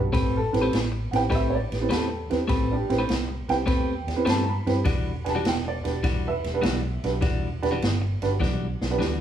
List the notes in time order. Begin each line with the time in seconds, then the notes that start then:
Already playing: B1 A4
0.13 A1 A3 C4 G4 B4, kick, snare, ride
0.37 A4
0.53 A1 C4 E4 G4 B4, snare, ride
0.62 A3 C4 G4 B4
0.73 A1, snare, ride
0.92 muted clean electric guitar stroke
1.11 A1 C4 E4 G4 B4 F#5, snare, ride
1.16 G5
1.30 A1 A3 C4 G4 B4 D#5, kick, snare, ride
1.35 E5
1.50 C#5
1.55 D5
1.71 A1 G4 B4, snare, ride
1.81 C4 E4 G4 B4
1.89 E2 A3 C4 G4 B4, snare, ride
1.95 A4
2.09 muted clean electric guitar stroke
2.30 E2 C4 E4 G4 B4, snare, ride
2.48 A1 A3 C4 G4 B4, kick, snare, ride
2.72 D4 G4
2.90 A1 C4 E4 G4 B4, snare, ride
2.98 A3 C4 G4 B4
3.09 C2, snare, ride
3.28 muted clean electric guitar stroke
3.49 C2 C4 E4 G4 B4 G5, snare, ride
3.66 E2 A3 C4 G4 B4, kick, snare, ride
4.07 E2 G4 D5, snare, ride
4.16 C4 E4 G4 B4
4.25 G2 A3 C4 G4 B4, snare, ride
4.29 A5
4.45 A#5, muted clean electric guitar stroke
4.49 B5
4.66 G2 C4 E4 G4 B4, snare, ride
4.85 E1 E3 G3 D4 F#4, kick, snare, ride
5.24 E1 D4 F#4 G4 B4 G#5, snare, ride
5.29 A5
5.35 E3 G3 D4 F#4
5.45 E1 G5, snare, ride
5.65 D5, muted clean electric guitar stroke
5.84 E1 D4 F#4 G4 B4, snare, ride
6.03 E1 E3 G3 D4 F#4, kick, snare, ride
6.27 B4 E5
6.44 E1 G4 B4, snare, ride
6.54 D4 F#4 G4 B4
6.62 B1 E3 G3 D4 F#4, snare, ride
6.82 muted clean electric guitar stroke
7.04 B1 D4 F#4 G4 B4, snare, ride
7.21 E1 E3 G3 D4 F#4, kick, snare, ride
7.62 E1 D4 F#4 G4 B4, snare, ride
7.71 E3 G3 D4 F#4
7.82 G1, snare, ride
8.02 muted clean electric guitar stroke
8.22 G1 D4 F#4 G4 B4, snare, ride
8.40 B1 E3 G3 D4 F#4, kick, snare
8.81 B1 G4 D5, snare
8.90 D4 F#4 G4 B4
8.98 D2 E3 G3 D4 F#4, snare